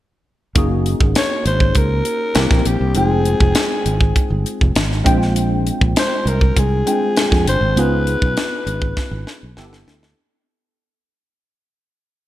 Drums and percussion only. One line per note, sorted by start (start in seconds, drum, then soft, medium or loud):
0.55 kick loud
0.55 closed hi-hat medium
0.86 closed hi-hat medium
1.01 kick medium
1.15 snare loud
1.15 closed hi-hat medium
1.46 closed hi-hat medium
1.60 kick medium
1.75 kick medium
1.75 closed hi-hat medium
2.05 closed hi-hat medium
2.35 snare loud
2.35 closed hi-hat medium
2.51 kick medium
2.51 snare soft
2.65 closed hi-hat medium
2.95 closed hi-hat medium
3.25 closed hi-hat medium
3.40 kick medium
3.55 snare loud
3.55 closed hi-hat medium
3.86 closed hi-hat medium
4.01 kick medium
4.16 kick medium
4.16 closed hi-hat medium
4.46 closed hi-hat medium
4.61 kick medium
4.76 snare loud
4.76 closed hi-hat medium
4.92 snare soft
5.06 kick loud
5.06 closed hi-hat medium
5.22 snare soft
5.36 closed hi-hat medium
5.67 closed hi-hat medium
5.81 kick medium
5.96 snare loud
5.96 closed hi-hat medium
6.27 closed hi-hat medium
6.41 kick medium
6.56 kick medium
6.56 closed hi-hat medium
6.87 closed hi-hat medium
7.17 snare loud
7.17 closed hi-hat medium
7.32 kick medium
7.32 snare soft
7.47 closed hi-hat medium
7.77 closed hi-hat medium
8.07 closed hi-hat medium
8.22 kick medium
8.37 snare loud
8.37 closed hi-hat medium
8.67 closed hi-hat medium
8.82 kick medium
8.97 kick medium
8.97 snare soft
9.27 snare medium
9.57 snare medium
9.73 snare medium
9.88 snare medium
10.03 snare medium